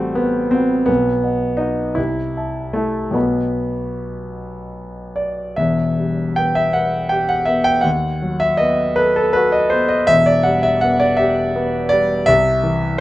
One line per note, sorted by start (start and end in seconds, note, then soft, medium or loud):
0.00 0.91 A1 medium
0.00 0.91 G3 medium
0.00 0.17 A3 medium
0.00 0.51 C4 medium
0.00 0.53 F#4 soft
0.00 0.17 C5 soft
0.00 0.17 F#5 soft
0.15 0.52 B3 medium
0.15 0.49 C5 soft
0.15 0.49 F#5 soft
0.51 0.87 C4 medium
0.51 0.85 F#4 soft
0.51 0.85 C5 soft
0.51 0.86 F#5 soft
0.86 1.22 B1 medium
0.86 1.58 B3 medium
1.24 1.56 D#5 soft
1.24 1.56 F#5 soft
1.57 1.96 D#4 medium
1.57 1.94 F#4 soft
1.57 1.94 D#5 soft
1.57 1.94 F#5 soft
1.95 2.35 C2 soft
1.95 2.73 E4 medium
2.37 2.71 E5 soft
2.37 2.71 A5 soft
2.73 3.14 A3 medium
2.73 3.11 E4 soft
2.73 3.11 E5 soft
2.73 3.11 A5 soft
3.11 5.53 B1 soft
3.11 5.17 B3 medium
3.11 5.53 F#4 soft
3.11 5.54 D#5 soft
3.11 5.55 B5 soft
5.16 5.58 D5 medium
5.56 7.80 E1 medium
5.56 7.81 E2 medium
5.56 6.36 E5 medium
5.99 6.60 G3 soft
6.36 6.98 B3 soft
6.36 6.56 G5 medium
6.55 6.75 E5 medium
6.73 7.34 B4 soft
6.73 7.11 F#5 medium
7.09 7.70 G4 medium
7.09 7.29 G5 medium
7.29 7.47 F#5 medium
7.45 7.85 B3 medium
7.45 7.65 E5 medium
7.64 7.84 G5 loud
7.81 10.06 D#2 medium
7.81 8.40 F#5 medium
8.22 8.84 F#3 soft
8.40 8.60 E5 loud
8.57 9.21 B3 medium
8.57 8.97 D#5 loud
8.96 9.14 A4 medium
8.96 9.16 B4 loud
9.16 9.36 A4 medium
9.33 9.95 F#4 medium
9.33 9.53 B4 loud
9.52 9.72 D#5 medium
9.70 10.10 B3 soft
9.70 9.90 C5 medium
9.89 10.09 D#5 medium
10.07 12.23 E1 medium
10.07 12.23 E2 medium
10.07 10.27 E5 loud
10.26 10.46 D5 medium
10.43 11.05 G3 medium
10.43 10.64 F#5 medium
10.63 10.82 E5 loud
10.81 11.41 B3 medium
10.81 11.00 F#5 loud
11.00 11.19 D5 medium
11.17 11.77 G4 medium
11.17 11.90 E5 loud
11.56 12.13 B3 medium
11.89 12.28 G3 medium
11.89 12.26 D5 loud
12.26 13.00 C2 medium
12.26 13.00 E5 loud
12.63 13.00 E3 medium